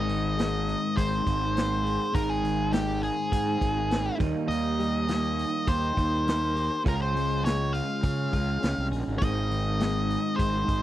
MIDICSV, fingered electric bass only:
0, 0, Header, 1, 2, 480
1, 0, Start_track
1, 0, Key_signature, -4, "major"
1, 0, Tempo, 588235
1, 1745, Time_signature, 4, 2, 24, 8
1, 8832, End_track
2, 0, Start_track
2, 0, Title_t, "Fingered electric bass"
2, 0, Program_c, 0, 33
2, 0, Note_on_c, 0, 32, 79
2, 606, Note_off_c, 0, 32, 0
2, 798, Note_on_c, 0, 32, 80
2, 987, Note_off_c, 0, 32, 0
2, 1034, Note_on_c, 0, 32, 85
2, 1610, Note_off_c, 0, 32, 0
2, 1751, Note_on_c, 0, 32, 85
2, 2522, Note_off_c, 0, 32, 0
2, 2716, Note_on_c, 0, 44, 77
2, 2905, Note_off_c, 0, 44, 0
2, 2951, Note_on_c, 0, 32, 72
2, 3335, Note_off_c, 0, 32, 0
2, 3431, Note_on_c, 0, 39, 87
2, 3526, Note_off_c, 0, 39, 0
2, 3660, Note_on_c, 0, 39, 82
2, 4437, Note_off_c, 0, 39, 0
2, 4631, Note_on_c, 0, 39, 85
2, 4823, Note_off_c, 0, 39, 0
2, 4877, Note_on_c, 0, 39, 78
2, 5454, Note_off_c, 0, 39, 0
2, 5595, Note_on_c, 0, 37, 81
2, 6366, Note_off_c, 0, 37, 0
2, 6556, Note_on_c, 0, 49, 78
2, 6747, Note_off_c, 0, 49, 0
2, 6800, Note_on_c, 0, 37, 75
2, 6989, Note_off_c, 0, 37, 0
2, 7046, Note_on_c, 0, 37, 69
2, 7146, Note_off_c, 0, 37, 0
2, 7166, Note_on_c, 0, 36, 74
2, 7266, Note_off_c, 0, 36, 0
2, 7278, Note_on_c, 0, 34, 73
2, 7382, Note_off_c, 0, 34, 0
2, 7405, Note_on_c, 0, 32, 67
2, 7506, Note_off_c, 0, 32, 0
2, 7525, Note_on_c, 0, 32, 77
2, 8291, Note_off_c, 0, 32, 0
2, 8480, Note_on_c, 0, 32, 87
2, 8668, Note_off_c, 0, 32, 0
2, 8718, Note_on_c, 0, 32, 80
2, 8832, Note_off_c, 0, 32, 0
2, 8832, End_track
0, 0, End_of_file